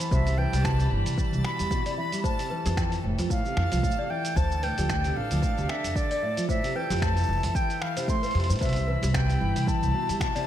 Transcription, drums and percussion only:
0.00 open hi-hat medium
0.00 cabasa medium
0.11 kick loud
0.11 cabasa medium
0.27 open hi-hat soft
0.27 cabasa soft
0.53 open hi-hat medium
0.53 cabasa medium
0.65 finger snap medium
0.65 kick loud
0.65 cabasa medium
0.80 open hi-hat soft
0.80 cabasa soft
1.06 open hi-hat medium
1.06 cabasa medium
1.18 kick loud
1.18 cabasa medium
1.33 cabasa soft
1.45 finger snap medium
1.59 open hi-hat medium
1.59 cabasa medium
1.71 kick loud
1.71 cabasa medium
1.86 open hi-hat soft
1.86 cabasa soft
2.13 open hi-hat medium
2.13 cabasa medium
2.24 kick loud
2.24 cabasa medium
2.39 open hi-hat soft
2.39 cabasa soft
2.66 open hi-hat medium
2.66 cabasa medium
2.77 finger snap medium
2.77 kick loud
2.77 cabasa medium
2.92 open hi-hat soft
2.92 cabasa soft
3.19 open hi-hat medium
3.19 cabasa medium
3.30 kick loud
3.30 cabasa medium
3.45 cabasa soft
3.57 finger snap medium
3.72 open hi-hat medium
3.72 cabasa medium
3.83 kick loud
3.83 cabasa medium
3.91 cabasa soft
4.25 open hi-hat medium
4.25 cabasa medium
4.36 kick loud
4.36 cabasa soft
4.51 cabasa soft
4.63 open hi-hat soft
4.78 open hi-hat medium
4.78 cabasa medium
4.89 finger snap medium
4.89 kick medium
4.89 cabasa medium
5.04 open hi-hat soft
5.04 cabasa soft
5.31 open hi-hat medium
5.31 cabasa medium
5.43 kick loud
5.43 cabasa medium
5.58 cabasa soft
5.69 finger snap medium
5.84 open hi-hat medium
5.84 cabasa medium
5.96 kick loud
5.96 cabasa medium
6.11 open hi-hat soft
6.11 cabasa soft
6.37 open hi-hat medium
6.37 cabasa medium
6.49 kick medium
6.49 cabasa medium
6.64 open hi-hat soft
6.64 cabasa soft
6.90 open hi-hat medium
6.90 cabasa medium
6.93 open hi-hat soft
6.99 open hi-hat soft
7.00 finger snap medium
7.00 kick loud
7.00 open hi-hat soft
7.00 cabasa medium
7.17 open hi-hat soft
7.17 cabasa soft
7.20 cabasa soft
7.23 cabasa soft
7.26 cabasa soft
7.29 cabasa soft
7.32 cabasa soft
7.36 cabasa soft
7.40 open hi-hat medium
7.40 cabasa soft
7.43 cabasa medium
7.55 kick loud
7.55 cabasa medium
7.70 open hi-hat soft
7.70 cabasa soft
7.82 finger snap medium
7.97 open hi-hat medium
7.97 cabasa medium
8.08 kick loud
8.08 cabasa medium
8.23 open hi-hat soft
8.23 cabasa soft
8.26 open hi-hat soft
8.31 open hi-hat soft
8.35 open hi-hat soft
8.40 open hi-hat soft
8.44 open hi-hat soft
8.50 open hi-hat soft
8.50 cabasa medium
8.53 open hi-hat soft
8.56 open hi-hat soft
8.59 kick medium
8.59 open hi-hat soft
8.62 open hi-hat soft
8.62 cabasa medium
8.65 open hi-hat soft
8.69 open hi-hat soft
8.73 open hi-hat medium
8.76 open hi-hat soft
8.76 cabasa soft
9.03 open hi-hat medium
9.03 cabasa medium
9.14 finger snap loud
9.14 kick loud
9.14 cabasa medium
9.30 open hi-hat soft
9.30 cabasa soft
9.56 open hi-hat medium
9.56 cabasa medium
9.67 kick loud
9.67 cabasa medium
9.83 cabasa soft
10.09 open hi-hat medium
10.09 cabasa medium
10.21 finger snap loud
10.21 kick loud
10.21 cabasa medium
10.36 open hi-hat soft
10.36 cabasa soft

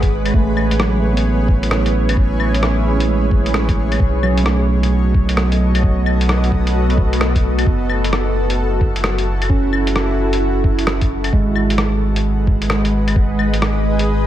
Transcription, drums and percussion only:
0.03 kick loud
0.03 closed hi-hat soft
0.26 closed hi-hat medium
0.26 claves soft
0.34 kick loud
0.57 claves medium
0.71 closed hi-hat medium
0.80 cross-stick loud
1.17 closed hi-hat medium
1.48 kick loud
1.63 closed hi-hat medium
1.71 cross-stick loud
1.86 closed hi-hat soft
2.09 closed hi-hat medium
2.09 claves medium
2.17 kick loud
2.40 claves medium
2.54 closed hi-hat medium
2.63 cross-stick loud
3.00 closed hi-hat medium
3.31 kick loud
3.46 closed hi-hat medium
3.54 cross-stick loud
3.69 kick loud
3.69 closed hi-hat soft
3.92 closed hi-hat medium
3.92 claves medium
4.00 kick loud
4.23 claves medium
4.38 closed hi-hat medium
4.46 cross-stick loud
4.83 closed hi-hat medium
5.14 kick loud
5.29 closed hi-hat medium
5.37 cross-stick loud
5.52 closed hi-hat soft
5.75 closed hi-hat medium
5.75 claves medium
5.83 kick loud
6.06 claves medium
6.21 closed hi-hat medium
6.29 cross-stick loud
6.44 closed hi-hat soft
6.52 kick medium
6.67 closed hi-hat medium
6.90 closed hi-hat soft
6.98 kick loud
7.13 closed hi-hat medium
7.21 cross-stick loud
7.35 kick loud
7.35 closed hi-hat soft
7.59 closed hi-hat medium
7.59 claves medium
7.67 kick loud
7.90 claves medium
8.04 closed hi-hat medium
8.13 cross-stick loud
8.50 closed hi-hat medium
8.81 kick loud
8.96 closed hi-hat medium
9.04 cross-stick loud
9.18 closed hi-hat soft
9.42 closed hi-hat medium
9.42 claves medium
9.50 kick loud
9.73 claves medium
9.87 closed hi-hat medium
9.96 cross-stick loud
10.33 closed hi-hat medium
10.64 kick loud
10.79 closed hi-hat medium
10.87 cross-stick loud
11.01 kick loud
11.01 closed hi-hat soft
11.24 closed hi-hat medium
11.24 claves medium
11.33 kick loud
11.56 claves medium
11.70 closed hi-hat medium
11.78 cross-stick loud
12.16 closed hi-hat medium
12.47 kick loud
12.62 closed hi-hat medium
12.70 cross-stick loud
12.85 closed hi-hat soft
13.08 closed hi-hat medium
13.08 claves medium
13.16 kick loud
13.39 claves medium
13.54 closed hi-hat medium
13.62 cross-stick loud
13.99 closed hi-hat medium

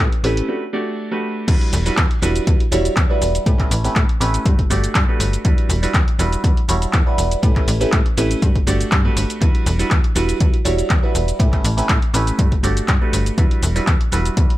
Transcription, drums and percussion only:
0.12 closed hi-hat soft
0.24 open hi-hat loud
0.37 closed hi-hat medium
1.48 kick loud
1.48 closed hi-hat medium
1.48 crash loud
1.48 cabasa soft
1.61 closed hi-hat soft
1.73 open hi-hat loud
1.73 cabasa medium
1.86 open hi-hat medium
1.86 cabasa soft
1.97 kick loud
1.97 clap loud
1.97 closed hi-hat medium
1.97 cabasa soft
2.11 closed hi-hat soft
2.23 open hi-hat loud
2.23 cabasa medium
2.36 closed hi-hat medium
2.36 cabasa soft
2.47 kick loud
2.47 closed hi-hat medium
2.47 cabasa soft
2.60 closed hi-hat soft
2.72 open hi-hat loud
2.72 cabasa medium
2.85 closed hi-hat medium
2.85 cabasa soft
2.96 kick loud
2.96 clap loud
2.96 closed hi-hat medium
2.96 cabasa soft
3.22 open hi-hat loud
3.22 cabasa medium
3.35 closed hi-hat medium
3.35 cabasa soft
3.46 kick loud
3.46 closed hi-hat medium
3.46 cabasa soft
3.59 kick medium
3.59 clap soft
3.59 closed hi-hat soft
3.71 open hi-hat loud
3.71 cabasa medium
3.85 open hi-hat medium
3.85 cabasa soft
3.96 kick loud
3.96 clap loud
3.96 closed hi-hat medium
3.96 cabasa soft
4.09 closed hi-hat soft
4.21 open hi-hat loud
4.21 cabasa medium
4.34 closed hi-hat medium
4.34 cabasa soft
4.46 kick loud
4.46 closed hi-hat medium
4.46 cabasa soft
4.59 kick medium
4.59 closed hi-hat soft
4.71 open hi-hat loud
4.71 cabasa medium
4.84 closed hi-hat medium
4.84 cabasa soft
4.95 kick loud
4.95 clap loud
4.95 closed hi-hat medium
4.95 cabasa soft
5.20 open hi-hat loud
5.20 cabasa medium
5.33 closed hi-hat medium
5.33 cabasa soft
5.45 kick loud
5.45 closed hi-hat medium
5.45 cabasa soft
5.58 closed hi-hat soft
5.70 open hi-hat loud
5.70 cabasa medium
5.83 open hi-hat medium
5.83 cabasa soft
5.94 kick loud
5.94 clap loud
5.94 closed hi-hat medium
5.94 cabasa soft
6.08 closed hi-hat soft
6.19 open hi-hat loud
6.19 cabasa medium
6.33 closed hi-hat medium
6.33 cabasa soft
6.44 kick loud
6.44 closed hi-hat medium
6.44 cabasa soft
6.57 closed hi-hat soft
6.69 open hi-hat loud
6.69 cabasa medium
6.82 closed hi-hat medium
6.82 cabasa soft
6.93 kick loud
6.93 clap loud
6.93 closed hi-hat medium
6.93 cabasa soft
7.18 open hi-hat loud
7.18 cabasa medium
7.31 closed hi-hat medium
7.31 cabasa soft
7.43 kick loud
7.43 closed hi-hat medium
7.43 cabasa soft
7.56 kick medium
7.56 clap soft
7.56 closed hi-hat soft
7.68 open hi-hat loud
7.68 cabasa medium
7.81 open hi-hat medium
7.81 cabasa soft
7.92 kick loud
7.92 clap loud
7.92 closed hi-hat medium
7.92 cabasa soft
8.06 closed hi-hat soft
8.18 open hi-hat loud
8.18 cabasa medium
8.31 closed hi-hat medium
8.31 cabasa soft
8.42 kick loud
8.42 closed hi-hat medium
8.42 cabasa soft
8.55 kick medium
8.55 closed hi-hat soft
8.67 open hi-hat loud
8.67 cabasa medium
8.81 closed hi-hat medium
8.81 cabasa soft
8.92 kick loud
8.92 clap loud
8.92 closed hi-hat medium
8.92 cabasa soft
9.17 open hi-hat loud
9.17 cabasa medium
9.30 closed hi-hat medium
9.30 cabasa soft
9.42 kick loud
9.42 closed hi-hat medium
9.42 cabasa soft
9.55 closed hi-hat soft
9.66 open hi-hat loud
9.66 cabasa medium
9.79 open hi-hat medium
9.79 cabasa soft
9.91 kick loud
9.91 clap loud
9.91 closed hi-hat medium
9.91 cabasa soft
10.04 closed hi-hat soft
10.16 open hi-hat loud
10.16 cabasa medium
10.29 closed hi-hat medium
10.29 cabasa soft
10.40 kick loud
10.40 closed hi-hat medium
10.40 cabasa soft
10.54 closed hi-hat soft
10.65 open hi-hat loud
10.65 cabasa medium
10.79 closed hi-hat medium
10.79 cabasa soft
10.90 kick loud
10.90 clap loud
10.90 closed hi-hat medium
10.90 cabasa soft
11.15 open hi-hat loud
11.15 cabasa medium
11.28 closed hi-hat medium
11.28 cabasa soft
11.40 kick loud
11.40 closed hi-hat medium
11.40 cabasa soft
11.52 kick medium
11.52 clap soft
11.52 closed hi-hat soft
11.65 open hi-hat loud
11.65 cabasa medium
11.78 open hi-hat medium
11.78 cabasa soft
11.89 kick loud
11.89 clap loud
11.89 closed hi-hat medium
11.89 cabasa soft
12.02 closed hi-hat soft
12.14 open hi-hat loud
12.14 cabasa medium
12.27 closed hi-hat medium
12.27 cabasa soft
12.39 kick loud
12.39 closed hi-hat medium
12.39 cabasa soft
12.52 kick medium
12.52 closed hi-hat soft
12.64 open hi-hat loud
12.64 cabasa medium
12.77 closed hi-hat medium
12.77 cabasa soft
12.88 kick loud
12.88 clap loud
12.88 closed hi-hat medium
12.88 cabasa soft
13.13 open hi-hat loud
13.13 cabasa medium
13.26 closed hi-hat medium
13.26 cabasa soft
13.38 kick loud
13.38 closed hi-hat medium
13.38 cabasa soft
13.51 closed hi-hat soft
13.63 open hi-hat loud
13.63 cabasa medium
13.76 open hi-hat medium
13.76 cabasa soft
13.87 kick loud
13.87 clap loud
13.87 closed hi-hat medium
13.87 cabasa soft
14.01 closed hi-hat soft
14.12 open hi-hat loud
14.12 cabasa medium
14.26 closed hi-hat medium
14.26 cabasa soft
14.37 kick loud
14.37 closed hi-hat medium
14.37 cabasa soft
14.50 closed hi-hat soft

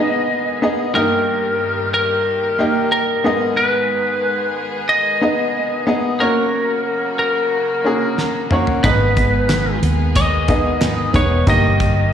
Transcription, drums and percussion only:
8.18 snare medium
8.51 mid tom medium
8.67 floor tom medium
8.84 kick loud
8.84 closed hi-hat medium
9.17 kick medium
9.17 closed hi-hat medium
9.49 snare loud
9.49 clap loud
9.49 closed hi-hat medium
9.83 closed hi-hat medium
10.16 kick medium
10.16 closed hi-hat loud
10.48 kick medium
10.48 closed hi-hat medium
10.81 snare loud
10.81 clap loud
10.81 closed hi-hat medium
11.14 kick loud
11.14 closed hi-hat medium
11.47 kick loud
11.47 closed hi-hat medium
11.80 kick medium
11.80 closed hi-hat medium

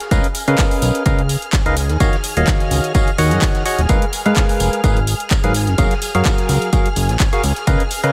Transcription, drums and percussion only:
0.00 snare soft
0.00 closed hi-hat soft
0.11 kick loud
0.11 closed hi-hat medium
0.11 tambourine medium
0.24 closed hi-hat soft
0.35 open hi-hat loud
0.35 tambourine medium
0.47 closed hi-hat soft
0.58 kick loud
0.58 snare loud
0.58 clap loud
0.58 closed hi-hat medium
0.58 tambourine medium
0.71 open hi-hat medium
0.82 open hi-hat loud
0.82 tambourine medium
0.94 closed hi-hat soft
1.06 kick loud
1.06 closed hi-hat medium
1.06 tambourine medium
1.19 closed hi-hat soft
1.29 open hi-hat loud
1.29 tambourine medium
1.42 closed hi-hat soft
1.53 kick loud
1.53 snare loud
1.53 clap loud
1.53 closed hi-hat medium
1.53 tambourine medium
1.66 closed hi-hat soft
1.77 snare soft
1.77 open hi-hat loud
1.77 tambourine medium
1.89 snare soft
1.89 closed hi-hat soft
2.00 kick loud
2.00 closed hi-hat medium
2.00 tambourine medium
2.13 snare soft
2.13 closed hi-hat soft
2.24 open hi-hat loud
2.24 tambourine medium
2.37 closed hi-hat soft
2.47 kick loud
2.47 snare loud
2.47 clap loud
2.47 closed hi-hat medium
2.47 tambourine medium
2.60 snare soft
2.60 closed hi-hat soft
2.71 open hi-hat loud
2.71 tambourine medium
2.84 closed hi-hat soft
2.94 kick loud
2.94 closed hi-hat medium
2.94 tambourine medium
3.08 closed hi-hat soft
3.18 open hi-hat loud
3.18 tambourine medium
3.31 snare soft
3.31 closed hi-hat soft
3.41 kick loud
3.41 snare loud
3.41 clap loud
3.41 open hi-hat medium
3.41 tambourine medium
3.55 snare medium
3.55 closed hi-hat soft
3.66 open hi-hat loud
3.66 tambourine medium
3.79 snare soft
3.79 closed hi-hat soft
3.89 kick loud
3.89 closed hi-hat medium
3.89 tambourine medium
4.02 closed hi-hat soft
4.13 open hi-hat loud
4.13 tambourine medium
4.26 closed hi-hat soft
4.36 kick loud
4.36 snare loud
4.36 clap loud
4.36 closed hi-hat medium
4.36 tambourine medium
4.49 open hi-hat medium
4.60 open hi-hat loud
4.60 tambourine medium
4.73 closed hi-hat soft
4.84 kick loud
4.84 closed hi-hat medium
4.84 tambourine medium
4.97 closed hi-hat soft
5.07 open hi-hat loud
5.07 tambourine medium
5.20 closed hi-hat soft
5.30 kick loud
5.30 snare loud
5.30 clap loud
5.30 closed hi-hat medium
5.30 tambourine medium
5.44 closed hi-hat soft
5.54 snare soft
5.54 open hi-hat loud
5.54 tambourine medium
5.67 snare soft
5.67 closed hi-hat soft
5.78 kick loud
5.78 closed hi-hat medium
5.78 tambourine medium
5.91 snare soft
5.91 closed hi-hat soft
6.02 open hi-hat loud
6.02 tambourine medium
6.15 closed hi-hat soft
6.25 kick loud
6.25 snare loud
6.25 clap loud
6.25 closed hi-hat medium
6.25 tambourine medium
6.38 snare soft
6.38 closed hi-hat soft
6.49 open hi-hat loud
6.49 tambourine medium
6.62 closed hi-hat soft
6.73 kick loud
6.73 closed hi-hat medium
6.73 tambourine medium
6.86 closed hi-hat soft
6.96 open hi-hat loud
6.96 tambourine medium
7.09 snare soft
7.09 closed hi-hat soft
7.20 kick loud
7.20 snare loud
7.20 clap loud
7.20 closed hi-hat medium
7.20 tambourine medium
7.33 snare soft
7.33 closed hi-hat soft
7.44 open hi-hat loud
7.44 tambourine medium
7.56 snare soft
7.56 closed hi-hat soft
7.67 kick loud
7.67 closed hi-hat medium
7.67 tambourine medium
7.80 closed hi-hat soft
7.91 open hi-hat loud
7.91 tambourine medium
8.04 closed hi-hat soft

